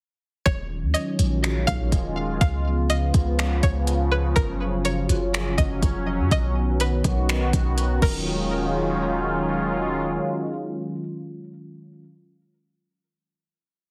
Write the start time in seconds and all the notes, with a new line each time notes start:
0.46 D#1 D#3 F#3 G#3 C#4 F4 C#5, kick, closed hi-hat
0.83 D#2
0.94 D#5, closed hi-hat
1.19 A#1, closed hi-hat
1.44 finger snap, closed hi-hat
1.67 A#1 F5, kick, closed hi-hat
1.92 D#1, kick, closed hi-hat
2.41 C#2 C#3 F3 B3 F5, kick, closed hi-hat
2.90 D#5, closed hi-hat
3.14 C#2, kick, closed hi-hat
3.39 finger snap, closed hi-hat
3.63 C#2 C#5, kick, closed hi-hat
3.87 closed hi-hat
4.12 B4
4.36 F#1 F#3 C#4 A#4, kick, closed hi-hat
4.85 C#5, closed hi-hat
5.09 F#1, closed hi-hat
5.34 finger snap, closed hi-hat
5.58 F#1 D#5, kick, closed hi-hat
5.82 F1, kick, closed hi-hat
6.19 F#2
6.31 B1 D#3 B3 F#4 D#5, kick, closed hi-hat
6.80 B4, closed hi-hat
7.04 B1, kick, closed hi-hat
7.29 finger snap, closed hi-hat
7.53 B1, kick, closed hi-hat
7.78 closed hi-hat
8.02 D#1 D#3 F#3 G#3 C#4 F4 A#4, kick, crash